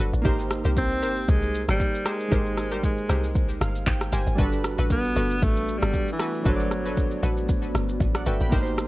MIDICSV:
0, 0, Header, 1, 7, 480
1, 0, Start_track
1, 0, Tempo, 517241
1, 231, Time_signature, 4, 2, 24, 8
1, 8239, End_track
2, 0, Start_track
2, 0, Title_t, "Synth pluck"
2, 0, Program_c, 0, 84
2, 228, Note_on_c, 0, 67, 91
2, 231, Note_on_c, 0, 70, 83
2, 234, Note_on_c, 0, 72, 102
2, 570, Note_off_c, 0, 67, 0
2, 571, Note_off_c, 0, 70, 0
2, 573, Note_off_c, 0, 72, 0
2, 600, Note_on_c, 0, 67, 79
2, 603, Note_on_c, 0, 70, 74
2, 606, Note_on_c, 0, 72, 92
2, 674, Note_off_c, 0, 67, 0
2, 676, Note_off_c, 0, 70, 0
2, 677, Note_off_c, 0, 72, 0
2, 948, Note_on_c, 0, 67, 82
2, 951, Note_on_c, 0, 70, 77
2, 953, Note_on_c, 0, 72, 94
2, 1038, Note_off_c, 0, 67, 0
2, 1040, Note_off_c, 0, 70, 0
2, 1041, Note_off_c, 0, 72, 0
2, 1908, Note_on_c, 0, 67, 78
2, 1911, Note_on_c, 0, 70, 74
2, 1914, Note_on_c, 0, 72, 87
2, 1998, Note_off_c, 0, 67, 0
2, 2000, Note_off_c, 0, 70, 0
2, 2001, Note_off_c, 0, 72, 0
2, 2148, Note_on_c, 0, 67, 94
2, 2151, Note_on_c, 0, 70, 87
2, 2153, Note_on_c, 0, 72, 104
2, 2490, Note_off_c, 0, 67, 0
2, 2491, Note_off_c, 0, 70, 0
2, 2492, Note_off_c, 0, 72, 0
2, 2521, Note_on_c, 0, 67, 82
2, 2523, Note_on_c, 0, 70, 74
2, 2526, Note_on_c, 0, 72, 91
2, 2595, Note_off_c, 0, 67, 0
2, 2596, Note_off_c, 0, 70, 0
2, 2597, Note_off_c, 0, 72, 0
2, 2868, Note_on_c, 0, 67, 83
2, 2871, Note_on_c, 0, 70, 77
2, 2874, Note_on_c, 0, 72, 88
2, 2959, Note_off_c, 0, 67, 0
2, 2960, Note_off_c, 0, 70, 0
2, 2961, Note_off_c, 0, 72, 0
2, 3828, Note_on_c, 0, 67, 83
2, 3831, Note_on_c, 0, 70, 75
2, 3834, Note_on_c, 0, 72, 92
2, 3918, Note_off_c, 0, 67, 0
2, 3920, Note_off_c, 0, 70, 0
2, 3921, Note_off_c, 0, 72, 0
2, 4068, Note_on_c, 0, 66, 95
2, 4071, Note_on_c, 0, 69, 85
2, 4074, Note_on_c, 0, 71, 98
2, 4410, Note_off_c, 0, 66, 0
2, 4411, Note_off_c, 0, 69, 0
2, 4413, Note_off_c, 0, 71, 0
2, 4440, Note_on_c, 0, 66, 79
2, 4443, Note_on_c, 0, 69, 73
2, 4446, Note_on_c, 0, 71, 90
2, 4514, Note_off_c, 0, 66, 0
2, 4516, Note_off_c, 0, 69, 0
2, 4517, Note_off_c, 0, 71, 0
2, 4788, Note_on_c, 0, 66, 85
2, 4791, Note_on_c, 0, 69, 73
2, 4794, Note_on_c, 0, 71, 86
2, 4878, Note_off_c, 0, 66, 0
2, 4880, Note_off_c, 0, 69, 0
2, 4881, Note_off_c, 0, 71, 0
2, 5747, Note_on_c, 0, 66, 85
2, 5750, Note_on_c, 0, 69, 72
2, 5753, Note_on_c, 0, 71, 93
2, 5838, Note_off_c, 0, 66, 0
2, 5839, Note_off_c, 0, 69, 0
2, 5841, Note_off_c, 0, 71, 0
2, 5987, Note_on_c, 0, 66, 95
2, 5990, Note_on_c, 0, 69, 82
2, 5993, Note_on_c, 0, 71, 104
2, 6330, Note_off_c, 0, 66, 0
2, 6331, Note_off_c, 0, 69, 0
2, 6332, Note_off_c, 0, 71, 0
2, 6359, Note_on_c, 0, 66, 82
2, 6362, Note_on_c, 0, 69, 73
2, 6365, Note_on_c, 0, 71, 91
2, 6434, Note_off_c, 0, 66, 0
2, 6435, Note_off_c, 0, 69, 0
2, 6437, Note_off_c, 0, 71, 0
2, 6707, Note_on_c, 0, 66, 78
2, 6710, Note_on_c, 0, 69, 75
2, 6713, Note_on_c, 0, 71, 89
2, 6798, Note_off_c, 0, 66, 0
2, 6799, Note_off_c, 0, 69, 0
2, 6801, Note_off_c, 0, 71, 0
2, 7668, Note_on_c, 0, 66, 85
2, 7671, Note_on_c, 0, 69, 73
2, 7673, Note_on_c, 0, 71, 87
2, 7758, Note_off_c, 0, 66, 0
2, 7760, Note_off_c, 0, 69, 0
2, 7761, Note_off_c, 0, 71, 0
2, 7908, Note_on_c, 0, 67, 92
2, 7911, Note_on_c, 0, 70, 83
2, 7914, Note_on_c, 0, 72, 103
2, 8239, Note_off_c, 0, 67, 0
2, 8239, Note_off_c, 0, 70, 0
2, 8239, Note_off_c, 0, 72, 0
2, 8239, End_track
3, 0, Start_track
3, 0, Title_t, "Synth keys"
3, 0, Program_c, 1, 88
3, 0, Control_c, 1, 64, 127
3, 0, Note_on_c, 1, 54, 73
3, 0, Note_on_c, 1, 62, 66
3, 0, Note_on_c, 1, 66, 65
3, 0, Note_on_c, 1, 69, 67
3, 0, Note_on_c, 1, 72, 65
3, 0, Note_on_c, 1, 74, 82
3, 178, Note_off_c, 1, 54, 0
3, 187, Note_off_c, 1, 62, 0
3, 195, Note_off_c, 1, 66, 0
3, 200, Note_on_c, 1, 58, 90
3, 204, Note_off_c, 1, 69, 0
3, 217, Note_on_c, 1, 63, 79
3, 234, Note_on_c, 1, 67, 83
3, 242, Note_off_c, 1, 74, 0
3, 242, Control_c, 1, 64, 0
3, 250, Note_off_c, 1, 72, 0
3, 252, Note_on_c, 1, 70, 84
3, 269, Note_on_c, 1, 72, 95
3, 416, Control_c, 1, 64, 127
3, 2098, Note_off_c, 1, 58, 0
3, 2107, Note_off_c, 1, 63, 0
3, 2115, Note_off_c, 1, 67, 0
3, 2120, Note_on_c, 1, 56, 76
3, 2124, Note_off_c, 1, 70, 0
3, 2133, Note_off_c, 1, 72, 0
3, 2137, Note_on_c, 1, 63, 68
3, 2154, Note_on_c, 1, 67, 64
3, 2172, Note_on_c, 1, 70, 66
3, 2189, Note_on_c, 1, 72, 80
3, 3355, Note_on_c, 1, 77, 72
3, 3576, Note_off_c, 1, 77, 0
3, 3595, Note_on_c, 1, 79, 72
3, 3816, Note_off_c, 1, 79, 0
3, 3835, Note_on_c, 1, 80, 73
3, 4018, Note_off_c, 1, 56, 0
3, 4027, Note_off_c, 1, 63, 0
3, 4036, Note_off_c, 1, 67, 0
3, 4041, Note_on_c, 1, 55, 86
3, 4044, Note_off_c, 1, 70, 0
3, 4053, Note_off_c, 1, 72, 0
3, 4056, Note_off_c, 1, 80, 0
3, 4058, Note_on_c, 1, 62, 77
3, 4075, Note_on_c, 1, 66, 78
3, 4082, Control_c, 1, 64, 0
3, 4093, Note_on_c, 1, 69, 78
3, 4109, Note_on_c, 1, 71, 93
3, 4239, Control_c, 1, 64, 127
3, 5939, Note_off_c, 1, 55, 0
3, 5947, Note_off_c, 1, 62, 0
3, 5956, Note_off_c, 1, 66, 0
3, 5960, Note_on_c, 1, 54, 73
3, 5965, Note_off_c, 1, 69, 0
3, 5973, Note_off_c, 1, 71, 0
3, 5977, Note_on_c, 1, 62, 67
3, 5994, Note_on_c, 1, 66, 66
3, 6012, Note_on_c, 1, 69, 66
3, 6029, Note_on_c, 1, 72, 67
3, 6073, Note_off_c, 1, 72, 0
3, 6086, Note_on_c, 1, 74, 79
3, 7451, Note_off_c, 1, 74, 0
3, 7567, Note_on_c, 1, 78, 71
3, 7572, Note_on_c, 1, 74, 57
3, 7668, Note_off_c, 1, 78, 0
3, 7670, Note_off_c, 1, 74, 0
3, 7675, Note_on_c, 1, 79, 73
3, 7681, Note_on_c, 1, 76, 66
3, 7799, Note_off_c, 1, 79, 0
3, 7802, Note_off_c, 1, 76, 0
3, 7808, Note_on_c, 1, 83, 74
3, 7813, Note_on_c, 1, 79, 60
3, 7858, Note_off_c, 1, 54, 0
3, 7867, Note_off_c, 1, 62, 0
3, 7876, Note_off_c, 1, 66, 0
3, 7880, Note_on_c, 1, 58, 85
3, 7884, Note_off_c, 1, 69, 0
3, 7897, Note_on_c, 1, 63, 81
3, 7914, Note_on_c, 1, 67, 76
3, 7922, Control_c, 1, 64, 0
3, 7932, Note_on_c, 1, 70, 80
3, 7949, Note_on_c, 1, 71, 76
3, 7993, Note_off_c, 1, 71, 0
3, 8007, Note_on_c, 1, 72, 95
3, 8033, Note_off_c, 1, 83, 0
3, 8036, Note_off_c, 1, 79, 0
3, 8088, Control_c, 1, 64, 127
3, 8239, Note_off_c, 1, 58, 0
3, 8239, Note_off_c, 1, 63, 0
3, 8239, Note_off_c, 1, 67, 0
3, 8239, Note_off_c, 1, 70, 0
3, 8239, Note_off_c, 1, 72, 0
3, 8239, End_track
4, 0, Start_track
4, 0, Title_t, "Ambient pad"
4, 0, Program_c, 2, 92
4, 4072, Note_on_c, 2, 59, 74
4, 4072, Note_on_c, 2, 66, 79
4, 4073, Note_on_c, 2, 57, 72
4, 7874, Note_off_c, 2, 59, 0
4, 7874, Note_off_c, 2, 66, 0
4, 7875, Note_off_c, 2, 57, 0
4, 7910, Note_on_c, 2, 58, 72
4, 7910, Note_on_c, 2, 60, 72
4, 7911, Note_on_c, 2, 48, 80
4, 8239, Note_off_c, 2, 48, 0
4, 8239, Note_off_c, 2, 58, 0
4, 8239, Note_off_c, 2, 60, 0
4, 8239, End_track
5, 0, Start_track
5, 0, Title_t, "Alto saxophone"
5, 0, Program_c, 3, 65
5, 724, Note_on_c, 3, 60, 126
5, 1205, Note_on_c, 3, 56, 105
5, 1219, Note_off_c, 3, 60, 0
5, 1518, Note_off_c, 3, 56, 0
5, 1576, Note_on_c, 3, 55, 106
5, 1925, Note_on_c, 3, 56, 109
5, 1939, Note_off_c, 3, 55, 0
5, 2537, Note_on_c, 3, 55, 82
5, 2551, Note_off_c, 3, 56, 0
5, 2638, Note_off_c, 3, 55, 0
5, 2645, Note_on_c, 3, 56, 90
5, 3085, Note_off_c, 3, 56, 0
5, 4566, Note_on_c, 3, 59, 119
5, 5046, Note_on_c, 3, 57, 108
5, 5059, Note_off_c, 3, 59, 0
5, 5365, Note_on_c, 3, 55, 97
5, 5379, Note_off_c, 3, 57, 0
5, 5678, Note_off_c, 3, 55, 0
5, 5685, Note_on_c, 3, 52, 91
5, 6005, Note_on_c, 3, 54, 96
5, 6019, Note_off_c, 3, 52, 0
5, 6718, Note_off_c, 3, 54, 0
5, 8239, End_track
6, 0, Start_track
6, 0, Title_t, "Log drum bass"
6, 0, Program_c, 4, 39
6, 0, Note_on_c, 4, 31, 99
6, 116, Note_off_c, 4, 31, 0
6, 123, Note_on_c, 4, 33, 80
6, 225, Note_off_c, 4, 33, 0
6, 231, Note_on_c, 4, 32, 111
6, 584, Note_off_c, 4, 32, 0
6, 603, Note_on_c, 4, 36, 91
6, 951, Note_on_c, 4, 32, 98
6, 965, Note_off_c, 4, 36, 0
6, 1179, Note_off_c, 4, 32, 0
6, 1192, Note_on_c, 4, 36, 101
6, 1544, Note_off_c, 4, 36, 0
6, 1563, Note_on_c, 4, 32, 95
6, 1665, Note_off_c, 4, 32, 0
6, 2151, Note_on_c, 4, 32, 109
6, 2835, Note_off_c, 4, 32, 0
6, 2871, Note_on_c, 4, 36, 94
6, 3326, Note_off_c, 4, 36, 0
6, 3351, Note_on_c, 4, 31, 104
6, 3579, Note_off_c, 4, 31, 0
6, 3589, Note_on_c, 4, 32, 96
6, 3818, Note_off_c, 4, 32, 0
6, 3831, Note_on_c, 4, 31, 103
6, 3956, Note_off_c, 4, 31, 0
6, 3963, Note_on_c, 4, 32, 91
6, 4065, Note_off_c, 4, 32, 0
6, 4071, Note_on_c, 4, 31, 109
6, 4424, Note_off_c, 4, 31, 0
6, 4443, Note_on_c, 4, 33, 94
6, 4773, Note_off_c, 4, 33, 0
6, 4792, Note_on_c, 4, 31, 100
6, 5019, Note_off_c, 4, 31, 0
6, 5032, Note_on_c, 4, 33, 106
6, 5384, Note_off_c, 4, 33, 0
6, 5403, Note_on_c, 4, 31, 91
6, 5506, Note_off_c, 4, 31, 0
6, 5991, Note_on_c, 4, 31, 110
6, 6675, Note_off_c, 4, 31, 0
6, 6710, Note_on_c, 4, 33, 98
6, 7166, Note_off_c, 4, 33, 0
6, 7191, Note_on_c, 4, 31, 97
6, 7418, Note_off_c, 4, 31, 0
6, 7429, Note_on_c, 4, 33, 103
6, 7657, Note_off_c, 4, 33, 0
6, 7671, Note_on_c, 4, 31, 105
6, 7796, Note_off_c, 4, 31, 0
6, 7803, Note_on_c, 4, 33, 84
6, 7905, Note_off_c, 4, 33, 0
6, 7911, Note_on_c, 4, 32, 107
6, 8239, Note_off_c, 4, 32, 0
6, 8239, End_track
7, 0, Start_track
7, 0, Title_t, "Drums"
7, 124, Note_on_c, 9, 82, 54
7, 217, Note_off_c, 9, 82, 0
7, 231, Note_on_c, 9, 36, 117
7, 232, Note_on_c, 9, 82, 79
7, 324, Note_off_c, 9, 36, 0
7, 325, Note_off_c, 9, 82, 0
7, 363, Note_on_c, 9, 82, 47
7, 456, Note_off_c, 9, 82, 0
7, 469, Note_on_c, 9, 37, 97
7, 470, Note_on_c, 9, 82, 105
7, 562, Note_off_c, 9, 37, 0
7, 563, Note_off_c, 9, 82, 0
7, 604, Note_on_c, 9, 82, 56
7, 697, Note_off_c, 9, 82, 0
7, 710, Note_on_c, 9, 36, 109
7, 711, Note_on_c, 9, 82, 92
7, 803, Note_off_c, 9, 36, 0
7, 804, Note_off_c, 9, 82, 0
7, 841, Note_on_c, 9, 82, 45
7, 934, Note_off_c, 9, 82, 0
7, 952, Note_on_c, 9, 82, 90
7, 1045, Note_off_c, 9, 82, 0
7, 1082, Note_on_c, 9, 82, 51
7, 1175, Note_off_c, 9, 82, 0
7, 1190, Note_on_c, 9, 82, 85
7, 1192, Note_on_c, 9, 36, 125
7, 1283, Note_off_c, 9, 82, 0
7, 1285, Note_off_c, 9, 36, 0
7, 1323, Note_on_c, 9, 82, 52
7, 1416, Note_off_c, 9, 82, 0
7, 1435, Note_on_c, 9, 82, 93
7, 1528, Note_off_c, 9, 82, 0
7, 1563, Note_on_c, 9, 82, 62
7, 1566, Note_on_c, 9, 37, 100
7, 1656, Note_off_c, 9, 82, 0
7, 1659, Note_off_c, 9, 37, 0
7, 1669, Note_on_c, 9, 36, 93
7, 1673, Note_on_c, 9, 82, 77
7, 1762, Note_off_c, 9, 36, 0
7, 1766, Note_off_c, 9, 82, 0
7, 1805, Note_on_c, 9, 82, 55
7, 1897, Note_off_c, 9, 82, 0
7, 1908, Note_on_c, 9, 37, 107
7, 1908, Note_on_c, 9, 82, 106
7, 2000, Note_off_c, 9, 37, 0
7, 2001, Note_off_c, 9, 82, 0
7, 2043, Note_on_c, 9, 82, 53
7, 2136, Note_off_c, 9, 82, 0
7, 2151, Note_on_c, 9, 36, 124
7, 2151, Note_on_c, 9, 82, 78
7, 2244, Note_off_c, 9, 36, 0
7, 2244, Note_off_c, 9, 82, 0
7, 2283, Note_on_c, 9, 82, 49
7, 2376, Note_off_c, 9, 82, 0
7, 2389, Note_on_c, 9, 37, 94
7, 2390, Note_on_c, 9, 82, 101
7, 2482, Note_off_c, 9, 37, 0
7, 2483, Note_off_c, 9, 82, 0
7, 2523, Note_on_c, 9, 82, 57
7, 2616, Note_off_c, 9, 82, 0
7, 2630, Note_on_c, 9, 36, 107
7, 2631, Note_on_c, 9, 82, 90
7, 2723, Note_off_c, 9, 36, 0
7, 2724, Note_off_c, 9, 82, 0
7, 2761, Note_on_c, 9, 82, 45
7, 2854, Note_off_c, 9, 82, 0
7, 2871, Note_on_c, 9, 37, 92
7, 2872, Note_on_c, 9, 82, 91
7, 2964, Note_off_c, 9, 37, 0
7, 2965, Note_off_c, 9, 82, 0
7, 3003, Note_on_c, 9, 82, 53
7, 3095, Note_off_c, 9, 82, 0
7, 3110, Note_on_c, 9, 82, 82
7, 3112, Note_on_c, 9, 36, 125
7, 3203, Note_off_c, 9, 82, 0
7, 3205, Note_off_c, 9, 36, 0
7, 3244, Note_on_c, 9, 82, 53
7, 3336, Note_off_c, 9, 82, 0
7, 3354, Note_on_c, 9, 37, 101
7, 3356, Note_on_c, 9, 82, 95
7, 3446, Note_off_c, 9, 37, 0
7, 3449, Note_off_c, 9, 82, 0
7, 3484, Note_on_c, 9, 82, 62
7, 3577, Note_off_c, 9, 82, 0
7, 3589, Note_on_c, 9, 36, 94
7, 3592, Note_on_c, 9, 39, 92
7, 3594, Note_on_c, 9, 82, 72
7, 3682, Note_off_c, 9, 36, 0
7, 3685, Note_off_c, 9, 39, 0
7, 3687, Note_off_c, 9, 82, 0
7, 3723, Note_on_c, 9, 37, 98
7, 3726, Note_on_c, 9, 82, 55
7, 3816, Note_off_c, 9, 37, 0
7, 3818, Note_off_c, 9, 82, 0
7, 3829, Note_on_c, 9, 46, 85
7, 3829, Note_on_c, 9, 82, 104
7, 3922, Note_off_c, 9, 46, 0
7, 3922, Note_off_c, 9, 82, 0
7, 3963, Note_on_c, 9, 82, 52
7, 4056, Note_off_c, 9, 82, 0
7, 4071, Note_on_c, 9, 36, 120
7, 4071, Note_on_c, 9, 82, 81
7, 4164, Note_off_c, 9, 36, 0
7, 4164, Note_off_c, 9, 82, 0
7, 4203, Note_on_c, 9, 82, 49
7, 4296, Note_off_c, 9, 82, 0
7, 4309, Note_on_c, 9, 37, 99
7, 4310, Note_on_c, 9, 82, 104
7, 4402, Note_off_c, 9, 37, 0
7, 4403, Note_off_c, 9, 82, 0
7, 4443, Note_on_c, 9, 82, 55
7, 4536, Note_off_c, 9, 82, 0
7, 4550, Note_on_c, 9, 36, 114
7, 4551, Note_on_c, 9, 82, 92
7, 4643, Note_off_c, 9, 36, 0
7, 4644, Note_off_c, 9, 82, 0
7, 4681, Note_on_c, 9, 82, 43
7, 4774, Note_off_c, 9, 82, 0
7, 4793, Note_on_c, 9, 82, 92
7, 4885, Note_off_c, 9, 82, 0
7, 4923, Note_on_c, 9, 82, 55
7, 5015, Note_off_c, 9, 82, 0
7, 5030, Note_on_c, 9, 82, 80
7, 5032, Note_on_c, 9, 36, 127
7, 5123, Note_off_c, 9, 82, 0
7, 5125, Note_off_c, 9, 36, 0
7, 5164, Note_on_c, 9, 82, 52
7, 5256, Note_off_c, 9, 82, 0
7, 5275, Note_on_c, 9, 82, 95
7, 5368, Note_off_c, 9, 82, 0
7, 5403, Note_on_c, 9, 82, 61
7, 5406, Note_on_c, 9, 37, 106
7, 5496, Note_off_c, 9, 82, 0
7, 5499, Note_off_c, 9, 37, 0
7, 5509, Note_on_c, 9, 36, 94
7, 5513, Note_on_c, 9, 82, 72
7, 5602, Note_off_c, 9, 36, 0
7, 5606, Note_off_c, 9, 82, 0
7, 5645, Note_on_c, 9, 82, 54
7, 5738, Note_off_c, 9, 82, 0
7, 5748, Note_on_c, 9, 37, 105
7, 5749, Note_on_c, 9, 82, 106
7, 5841, Note_off_c, 9, 37, 0
7, 5841, Note_off_c, 9, 82, 0
7, 5882, Note_on_c, 9, 82, 53
7, 5975, Note_off_c, 9, 82, 0
7, 5990, Note_on_c, 9, 82, 81
7, 5991, Note_on_c, 9, 36, 119
7, 6083, Note_off_c, 9, 36, 0
7, 6083, Note_off_c, 9, 82, 0
7, 6122, Note_on_c, 9, 82, 50
7, 6215, Note_off_c, 9, 82, 0
7, 6228, Note_on_c, 9, 37, 95
7, 6229, Note_on_c, 9, 82, 104
7, 6321, Note_off_c, 9, 37, 0
7, 6322, Note_off_c, 9, 82, 0
7, 6363, Note_on_c, 9, 82, 57
7, 6456, Note_off_c, 9, 82, 0
7, 6470, Note_on_c, 9, 36, 111
7, 6471, Note_on_c, 9, 82, 87
7, 6563, Note_off_c, 9, 36, 0
7, 6563, Note_off_c, 9, 82, 0
7, 6600, Note_on_c, 9, 82, 43
7, 6693, Note_off_c, 9, 82, 0
7, 6712, Note_on_c, 9, 82, 90
7, 6805, Note_off_c, 9, 82, 0
7, 6842, Note_on_c, 9, 82, 53
7, 6935, Note_off_c, 9, 82, 0
7, 6950, Note_on_c, 9, 82, 81
7, 6952, Note_on_c, 9, 36, 126
7, 7043, Note_off_c, 9, 82, 0
7, 7045, Note_off_c, 9, 36, 0
7, 7084, Note_on_c, 9, 82, 53
7, 7176, Note_off_c, 9, 82, 0
7, 7192, Note_on_c, 9, 37, 98
7, 7195, Note_on_c, 9, 82, 93
7, 7285, Note_off_c, 9, 37, 0
7, 7288, Note_off_c, 9, 82, 0
7, 7323, Note_on_c, 9, 82, 62
7, 7416, Note_off_c, 9, 82, 0
7, 7429, Note_on_c, 9, 36, 94
7, 7433, Note_on_c, 9, 82, 78
7, 7522, Note_off_c, 9, 36, 0
7, 7526, Note_off_c, 9, 82, 0
7, 7563, Note_on_c, 9, 37, 101
7, 7565, Note_on_c, 9, 82, 57
7, 7655, Note_off_c, 9, 37, 0
7, 7657, Note_off_c, 9, 82, 0
7, 7669, Note_on_c, 9, 82, 107
7, 7762, Note_off_c, 9, 82, 0
7, 7802, Note_on_c, 9, 82, 54
7, 7895, Note_off_c, 9, 82, 0
7, 7910, Note_on_c, 9, 82, 80
7, 7911, Note_on_c, 9, 36, 120
7, 8003, Note_off_c, 9, 36, 0
7, 8003, Note_off_c, 9, 82, 0
7, 8042, Note_on_c, 9, 82, 47
7, 8135, Note_off_c, 9, 82, 0
7, 8149, Note_on_c, 9, 37, 98
7, 8150, Note_on_c, 9, 82, 103
7, 8239, Note_off_c, 9, 37, 0
7, 8239, Note_off_c, 9, 82, 0
7, 8239, End_track
0, 0, End_of_file